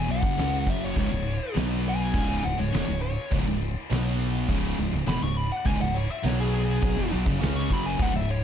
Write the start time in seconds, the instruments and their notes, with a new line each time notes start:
Already playing: lead electric guitar G#5
0.09 fretless electric bass B1, distorted electric guitar B2 F#3, lead electric guitar F#5, crash
0.22 fretless electric bass F#1, distorted electric guitar F#2 C#3, kick
0.37 fretless electric bass C#2, distorted electric guitar C#3 G#3 C#4, snare, crash
0.67 fretless electric bass F#1, distorted electric guitar F#2 C#3 F#3, lead electric guitar E5, kick, crash
0.85 lead electric guitar C#5
0.96 fretless electric bass C#1, distorted electric guitar C#2 G#2, lead electric guitar C#5, kick, crash
1.11 fretless electric bass C#1, distorted electric guitar C#2 G#2
1.26 crash
1.55 fretless electric bass B1, distorted electric guitar B2 F#3 B3, snare, crash
1.84 crash
1.89 lead electric guitar G#5
2.14 fretless electric bass C#1, distorted electric guitar C#2 G#2 C#3, kick, crash
2.44 fretless electric bass C#1, distorted electric guitar C#2 G#2, lead electric guitar F#5, crash
2.59 fretless electric bass C#1, distorted electric guitar C#2 G#2, lead electric guitar C#5
2.73 fretless electric bass E1, distorted electric guitar E2 B2, snare, crash
2.88 fretless electric bass C#1, distorted electric guitar C#2 G#2
3.02 lead electric guitar C#5, crash
3.32 fretless electric bass C#1, distorted electric guitar C#2 G#2, kick, crash
3.48 fretless electric bass C#1, distorted electric guitar C#2 G#2
3.61 crash
3.90 fretless electric bass B1, distorted electric guitar B2 F#3 B3, snare, crash
4.19 crash
4.49 fretless electric bass C#1, distorted electric guitar C#2 G#2 C#3, kick, crash
4.78 fretless electric bass C#1, distorted electric guitar C#2 G#2, crash
4.93 fretless electric bass C#1, distorted electric guitar C#2 G#2
5.07 fretless electric bass E1, distorted electric guitar E2 B2, lead electric guitar B5, snare, crash
5.22 fretless electric bass C#1, distorted electric guitar C#2 G#2, lead electric guitar C#6
5.36 lead electric guitar B5, crash
5.52 lead electric guitar F#5
5.65 fretless electric bass C#1, distorted electric guitar C#2 G#2, lead electric guitar G#5, kick, crash
5.80 fretless electric bass C#1, distorted electric guitar C#2 G#2, lead electric guitar F#5
5.95 lead electric guitar C#5, crash
6.11 lead electric guitar E5
6.23 fretless electric bass B1, distorted electric guitar B2 F#3 B3, lead electric guitar C#5, snare, crash
6.40 lead electric guitar G#4
6.54 lead electric guitar G#4, crash
6.83 fretless electric bass B1, distorted electric guitar B2 F#3, kick, crash
6.97 fretless electric bass E1, distorted electric guitar E2 B2
7.12 fretless electric bass B1, distorted electric guitar B2 F#3, crash
7.26 fretless electric bass F#1, distorted electric guitar F#2 C#3, kick
7.40 fretless electric bass C#2, distorted electric guitar C#3 G#3 C#4, snare, crash
7.56 lead electric guitar C#6
7.69 fretless electric bass F#1, distorted electric guitar F#2 C#3 F#3, lead electric guitar B5, kick, crash
7.86 lead electric guitar G#5
7.98 fretless electric bass C#1, distorted electric guitar C#2 G#2, lead electric guitar F#5, kick, crash
8.13 fretless electric bass C#1, distorted electric guitar C#2 G#2, lead electric guitar E5
8.29 lead electric guitar C#5, crash